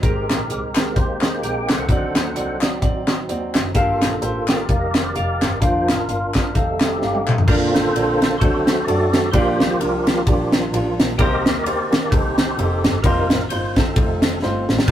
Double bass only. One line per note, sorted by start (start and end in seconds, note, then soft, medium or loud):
0.03 0.29 G#1 loud
0.29 0.46 A#1 medium
0.49 0.89 C2 medium
0.96 1.36 D#2 medium
1.42 1.65 A#1 medium
1.69 1.86 C2 medium
1.89 2.12 D2 medium
2.16 2.33 D#2 medium
2.36 2.82 C2 medium
2.82 3.22 A1 medium
3.29 3.55 D#2 medium
3.56 3.72 F#1 medium
3.75 3.98 G1 loud
4.02 4.19 A#1 medium
4.22 4.62 A1 medium
4.69 5.08 F1 loud
5.15 5.38 F1 loud
5.42 5.59 G1 medium
5.62 5.85 F1 loud
5.89 6.06 A1 medium
6.09 6.48 G1 medium
6.55 6.95 F1 medium
7.02 7.24 G1 medium
7.28 7.45 D2 medium
7.48 7.71 A#1 loud
7.75 7.91 A1 medium
7.94 8.41 A#1 medium
8.42 8.81 D2 loud
8.87 9.26 F#2 loud
9.34 9.56 A#1 loud
9.61 9.77 D2 medium
9.80 10.19 C2 medium
10.27 10.66 A#1 loud
10.72 10.95 A1 loud
10.99 11.16 A#1 loud
11.19 11.41 C2 loud
11.46 11.62 D#2 loud
11.65 12.04 D2 medium
12.12 12.51 C2 medium
12.58 12.80 F1 loud
12.85 13.01 G1 medium
13.04 13.26 F1 loud
13.30 13.47 A1 medium
13.51 13.89 G1 medium
13.96 14.35 F1 loud
14.43 14.65 G1 medium
14.68 14.85 A1 loud
14.88 14.91 A#1 loud